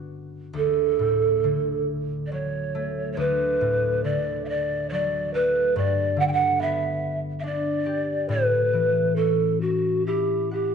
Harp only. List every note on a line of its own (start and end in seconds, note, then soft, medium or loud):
0.00 0.60 G2 soft
0.00 0.60 D3 soft
0.00 1.83 B3 soft
0.00 1.97 D4 soft
0.00 2.07 F#4 soft
0.53 3.16 D2 medium
0.99 1.50 A2 soft
1.44 3.23 D3 soft
2.32 3.23 F#3 soft
2.75 5.34 A3 soft
3.17 5.81 D2 medium
3.61 4.10 A2 soft
4.04 5.81 D3 soft
4.92 5.81 F#3 soft
5.34 8.67 A3 soft
5.76 8.34 G2 medium
6.17 8.34 D3 soft
6.60 9.70 B3 medium
7.43 9.23 D4 soft
7.86 10.21 G4 medium
8.29 10.75 A2 medium
8.73 10.75 E3 soft
9.17 10.75 C#4 soft
10.08 10.75 E4 soft
10.51 10.75 F#5 soft